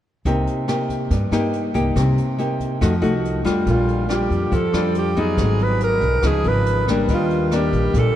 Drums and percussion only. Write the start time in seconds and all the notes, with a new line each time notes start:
0.25 kick, closed hi-hat
0.47 closed hi-hat
0.68 cross-stick, closed hi-hat
0.89 kick, closed hi-hat
1.11 kick, closed hi-hat
1.32 cross-stick, closed hi-hat
1.53 closed hi-hat
1.75 kick, closed hi-hat
1.96 kick, cross-stick, closed hi-hat
2.18 closed hi-hat
2.39 closed hi-hat
2.60 kick, closed hi-hat
2.81 kick, cross-stick, closed hi-hat
3.03 closed hi-hat
3.25 closed hi-hat
3.45 kick, cross-stick, closed hi-hat
3.67 kick, closed hi-hat
3.88 closed hi-hat
4.10 cross-stick, closed hi-hat
4.31 kick, closed hi-hat
4.52 kick, closed hi-hat
4.73 cross-stick, closed hi-hat
4.95 closed hi-hat
5.16 kick, closed hi-hat
5.37 kick, cross-stick, closed hi-hat
5.59 closed hi-hat
5.80 closed hi-hat
6.01 kick, closed hi-hat
6.22 kick, cross-stick, closed hi-hat
6.44 closed hi-hat
6.66 closed hi-hat
6.87 kick, cross-stick, closed hi-hat
7.08 kick, closed hi-hat
7.30 closed hi-hat
7.51 cross-stick, closed hi-hat
7.73 kick, closed hi-hat
7.94 kick, closed hi-hat